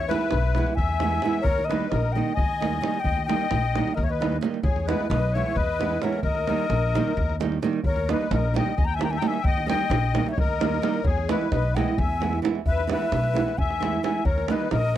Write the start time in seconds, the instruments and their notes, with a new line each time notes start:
Already playing: upright bass E2
0.08 nylon-string guitar E3 G#3 B3 E4, accordion B4, ocarina E5, davul high
0.21 davul high
0.31 upright bass B1, davul high
0.42 davul high
0.55 nylon-string guitar E3 G#3 B3 E4, davul high
0.67 davul high
0.75 upright bass E2, accordion E5, ocarina G#5, davul low
0.89 davul high
1.00 nylon-string guitar E3 G#3 B3 E4, davul high
1.11 davul high
1.22 nylon-string guitar E3 G#3 B3 E4, davul high
1.33 davul high
1.41 accordion A#4, ocarina C#5, davul low
1.45 upright bass D#2
1.58 davul high
1.65 ocarina D#5
1.69 nylon-string guitar D#3 G3 A#3 D#4, accordion B4, davul high
1.81 davul high
1.89 upright bass A#1, accordion A#4, ocarina D#5, davul high
2.12 nylon-string guitar D#3 G3 A#3, accordion D#5, ocarina G5
2.17 nylon-string guitar D#4
2.28 davul high
2.34 accordion D#5, ocarina G#5, davul low
2.39 upright bass D#2
2.61 nylon-string guitar D#3 G3 A#3 D#4, davul high
2.73 davul high
2.81 nylon-string guitar D#3 G3 A#3 D#4, davul high
2.94 davul high
3.00 accordion D#5, ocarina G5
3.04 upright bass D#2, davul low
3.17 davul high
3.25 nylon-string guitar D#3 G3, accordion D#5, ocarina G5
3.29 nylon-string guitar A#3 D#4, davul high
3.41 davul high
3.51 upright bass A#1, davul high
3.75 nylon-string guitar D#3 G3 A#3 D#4, davul high
3.87 davul high
3.94 upright bass D#2, accordion A#4, ocarina D#5, davul low
4.04 accordion C#5, ocarina E5
4.09 accordion B4, ocarina D#5
4.20 nylon-string guitar D#3 G3 A#3 D#4, davul high
4.32 davul high
4.41 nylon-string guitar D#3 G3 A#3 D#4, davul high
4.54 davul high
4.63 upright bass E2, accordion G#4, ocarina C#5, davul low
4.76 davul high
4.87 nylon-string guitar E3 G#3 B3 E4, accordion B4, ocarina D#5, davul high
5.00 davul high
5.09 upright bass B1, accordion B4, ocarina D#5, davul high
5.33 nylon-string guitar E3 G#3, accordion C#5, ocarina E5
5.37 nylon-string guitar B3 E4
5.46 davul high
5.55 upright bass E2, accordion B4, ocarina D#5, davul low
5.79 nylon-string guitar E3 G#3 B3 E4, davul high
5.91 davul high
6.01 nylon-string guitar E3 G#3 B3 E4, accordion A#4, ocarina C#5, davul high
6.13 davul high
6.22 upright bass D#2, accordion A#4, ocarina D#5, davul low
6.35 davul high
6.47 nylon-string guitar D#3 G3 A#3 D#4, davul high
6.58 davul high
6.70 upright bass A#1, davul high
6.95 nylon-string guitar D#3 G3 A#3 D#4, davul high
7.08 davul high
7.17 upright bass D#2, davul low
7.30 davul high
7.40 nylon-string guitar D#3 G3 A#3 D#4, davul high
7.52 davul high
7.62 nylon-string guitar D#3 G3 A#3 D#4, davul high
7.73 davul high
7.84 upright bass D#2, accordion A#4, ocarina C#5, davul low
7.96 davul high
8.09 nylon-string guitar D#3 G3 A#3 D#4, accordion B4, ocarina D#5, davul high
8.21 davul high
8.31 upright bass A#1, accordion A#4, ocarina D#5, davul high
8.54 nylon-string guitar D#3 G3 A#3 D#4, ocarina G5, davul high
8.58 accordion D#5
8.66 davul high
8.76 upright bass D#2, accordion D#5, ocarina G#5, davul low
8.85 accordion G5, ocarina A#5
8.94 accordion E5, ocarina G#5
8.99 nylon-string guitar D#3 G3 A#3 D#4, ocarina A#5, davul high
9.05 accordion G5
9.11 accordion E5, ocarina G#5, davul high
9.17 accordion G5, ocarina A#5
9.22 nylon-string guitar D#3 G3 A#3 D#4, davul high
9.27 accordion E5, ocarina G#5
9.34 davul high
9.43 upright bass D#2, accordion D#5, ocarina G5, davul low
9.58 davul high
9.66 nylon-string guitar D#3 G3 A#3 D#4, accordion D#5, ocarina G5, davul high
9.79 davul high
9.90 upright bass A#1, davul high
10.14 nylon-string guitar D#3 G3 A#3 D#4, davul high
10.27 ocarina E5, davul high
10.32 accordion C#5
10.37 upright bass D#2, accordion A#4, ocarina D#5, davul low
10.60 nylon-string guitar D#3 G3 A#3 D#4, davul high
10.74 davul high
10.82 nylon-string guitar D#3 G3 A#3 D#4, davul high
10.94 davul high
11.04 upright bass E2, accordion G#4, ocarina C#5, davul low
11.18 davul high
11.29 nylon-string guitar E3 G#3 B3 E4, accordion B4, ocarina D#5, davul high
11.41 davul high
11.50 upright bass B1, accordion B4, ocarina D#5, davul high
11.75 nylon-string guitar E3 G#3 B3 E4, accordion D#5, ocarina G5, davul high
11.88 davul high
11.98 upright bass E2, accordion E5, ocarina G#5, davul low
12.20 nylon-string guitar E3 G#3 B3 E4, davul high
12.33 davul high
12.42 nylon-string guitar E3 G#3 B3 E4, davul high
12.55 davul high
12.66 upright bass E2, accordion B4, ocarina E5, davul low
12.78 davul high
12.87 nylon-string guitar E3 G#3 B3 E4, davul high
12.91 accordion B4, ocarina E5
13.02 davul high
13.12 upright bass B1, davul high
13.24 davul high
13.33 nylon-string guitar E3 G#3 B3 E4, davul high
13.48 davul high
13.58 upright bass E2, accordion E5, ocarina G#5, davul low
13.70 davul high
13.80 nylon-string guitar E3 G#3 B3 E4, davul high
13.93 davul high
14.03 nylon-string guitar E3 G#3 B3 E4, accordion E5, ocarina G#5, davul high
14.25 upright bass D#2, accordion A#4, ocarina C#5, davul low
14.38 davul high
14.48 nylon-string guitar D#3 G3 A#3 D#4, accordion B4, ocarina D#5, davul high
14.60 davul high
14.71 upright bass A#1, accordion A#4, ocarina D#5, davul high